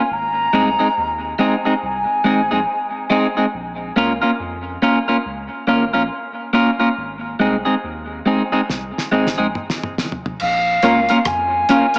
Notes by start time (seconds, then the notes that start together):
Already playing: G#5
0.11 G#1 A#5
0.53 C2 G#3 C4 D#4 G#4
0.79 G#3 C4 D#4 G#4
0.97 D#2
1.39 G#3 C4 D#4 G#4
1.65 G#3 C4 D#4 G#4
1.83 C2 G#5
2.24 G#1 G#3 C4 D#4 G#4
2.51 A#1 G#3 C4 D#4 G#4
3.10 G#3 C4 D#4 G#4
3.37 G#3 C4 D#4 G#4
3.54 A#1
3.96 C#2 A#3 C#4 F4 A#4
4.22 A#3 C#4 F4 A#4
4.40 F2
4.82 A#3 C#4 F4 A#4
5.08 A#3 C#4 F4 A#4
5.26 C#2
5.67 G#1 A#3 C#4 F4 A#4
5.93 A#1 A#3 C#4 F4 A#4
6.53 A#3 C#4 F4 A#4
6.80 A#3 C#4 F4 A#4
6.97 G#1
7.40 C2 G#3 C4 D#4 G#4
7.65 G#3 C4 D#4 G#4
7.84 D#2
8.26 G#3 C4 D#4 G#4
8.52 G#3 C4 D#4 G#4
8.70 C2, snare
8.98 snare
9.12 G#1 G#3 C4 D#4 G#4
9.27 snare
9.38 A#1 G#3 C4 D#4 G#4
9.55 mid tom
9.70 snare
9.83 mid tom
9.98 snare
10.12 floor tom
10.26 floor tom
10.40 A#1 F5, crash
10.83 C#2 A#3 C#4 F4 A#4 C#5, closed hi-hat
11.09 A#3 C#4 F4 A#4, closed hi-hat
11.25 F2 G#5, kick, cross-stick, closed hi-hat
11.69 A#3 C#4 F4 A#4 C#5, closed hi-hat
11.94 A#4, closed hi-hat